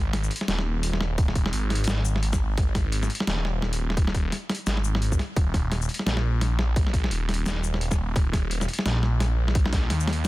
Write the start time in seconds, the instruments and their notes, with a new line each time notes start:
Already playing: detuned saw bass G#1
0.13 snare, closed hi-hat
0.24 shaker
0.31 closed hi-hat
0.36 closed hi-hat
0.41 snare
0.48 detuned saw bass D#1, snare, closed hi-hat
0.59 snare
0.83 closed hi-hat
0.93 snare
1.01 snare
1.18 kick, closed hi-hat
1.28 snare
1.35 kick, closed hi-hat
1.46 snare
1.53 detuned saw bass G#1, closed hi-hat
1.70 snare, closed hi-hat
1.75 closed hi-hat
1.84 snare, closed hi-hat, shaker
2.05 shaker
2.16 snare
2.23 closed hi-hat
2.33 kick, snare, shaker
2.58 detuned saw bass G#1, kick, snare, closed hi-hat
2.75 kick, snare, closed hi-hat
2.92 closed hi-hat
3.03 snare, shaker
3.10 closed hi-hat
3.15 closed hi-hat
3.20 snare
3.27 detuned saw bass D#1, snare, closed hi-hat
3.45 snare
3.62 snare
3.73 closed hi-hat
3.90 snare
3.97 kick, closed hi-hat
4.07 snare
4.14 kick, closed hi-hat
4.32 snare, closed hi-hat
4.50 snare, closed hi-hat
4.55 closed hi-hat
4.67 detuned saw bass G#1, snare, closed hi-hat, shaker
4.77 snare
4.84 shaker
4.95 snare
5.02 closed hi-hat
5.12 kick, shaker
5.19 snare, closed hi-hat
5.36 detuned saw bass D#1, kick, closed hi-hat
5.54 kick, snare, closed hi-hat
5.72 snare, closed hi-hat
5.82 shaker
5.89 closed hi-hat
5.94 closed hi-hat
5.99 snare
6.06 detuned saw bass A#1, snare, closed hi-hat
6.17 snare
6.41 snare, closed hi-hat
6.59 snare
6.76 kick, closed hi-hat
6.87 snare
6.94 kick, closed hi-hat
7.04 snare
7.11 detuned saw bass D#1, closed hi-hat
7.29 snare, closed hi-hat
7.34 closed hi-hat
7.46 snare, closed hi-hat, shaker
7.64 shaker
7.74 snare
7.81 closed hi-hat
7.91 kick, snare, shaker
8.16 detuned saw bass D#1, kick, snare, closed hi-hat
8.33 kick, snare, closed hi-hat
8.51 closed hi-hat
8.61 snare, shaker
8.68 closed hi-hat
8.73 closed hi-hat
8.79 snare
8.86 detuned saw bass A#1, snare, closed hi-hat
9.03 snare
9.20 snare, closed hi-hat
9.48 snare
9.55 kick, closed hi-hat
9.66 snare
9.73 kick, snare, closed hi-hat
9.90 detuned saw bass D#2, snare, closed hi-hat
10.00 shaker
10.08 snare, closed hi-hat
10.13 closed hi-hat